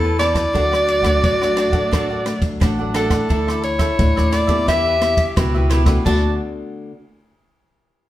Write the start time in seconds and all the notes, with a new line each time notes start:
Already playing: E2 E4 A4
0.03 B4 C#5 A5
0.18 E3 B3 C#4 A4 B4 C#5 D5 A5, cross-stick, ride
0.34 B4 C#5 A5, kick, cross-stick, ride
0.53 D2 D3 F#3 A3 D4 F#4 A4 D5 F#5, kick, ride
0.71 A4 D5 F#5, cross-stick
0.87 muted cavaquinho stroke, ride
1.02 D2 F#3 A3 D4 A4 D5 F#5, kick, cross-stick, ride
1.23 A1 A2, kick, ride
1.41 F#3 A3 D4 A4 D5 F#5, cross-stick
1.56 D4 A4 D5 F#5, cross-stick, ride
1.70 A1 F#3 A3 D4 A4 D5 F#5, kick, ride
1.92 D3 D4 F#4 A4 D5 F#5, kick, cross-stick, ride
2.10 A4 D5 F#5
2.25 F#3 A3 D4, muted cavaquinho stroke, cross-stick, ride
2.39 D2, kick, ride
2.60 A1 A2 D4 A4 D5 F#5, kick, cross-stick, ride
2.79 F#3 A3 D4 A4 D5 F#5
2.94 D4 A4 D5 F#5, cross-stick, ride
3.10 E3 A3 D4 A4 D5 F#5, kick, cross-stick, ride
3.29 D2 D3 D4 E4 A4 D5 E5, kick, ride
3.47 A4 D5 E5, cross-stick
3.63 C#5, muted cavaquinho stroke, ride
3.79 A4 E5, kick, cross-stick, ride
3.99 D2 A2 E3 A3 D4, kick, ride
4.16 D#2 A4 D5 E5, cross-stick
4.31 D4 A4 D5 E5, cross-stick, ride
4.47 B3 E4 G4 A4 D5 E5, kick, ride
4.67 E2 E3 E4 G4 B4 E5, kick, cross-stick, ride
4.85 G4 B4 E5
5.01 B3 E4 G4, muted cavaquinho stroke, cross-stick, ride
5.17 kick, ride
5.36 C#2 B2 E4 F#4 G4 B4 E5, kick, cross-stick, ride
5.55 B3 E4 G4 B4 E5
5.70 E4 G4 B4 E5, cross-stick, ride
5.86 A3 D4 F#4 G4 B4 E5, kick, cross-stick, ride
6.04 D2 D3 A3 D4 F#4 A4 D5 F#5 A5, kick, crash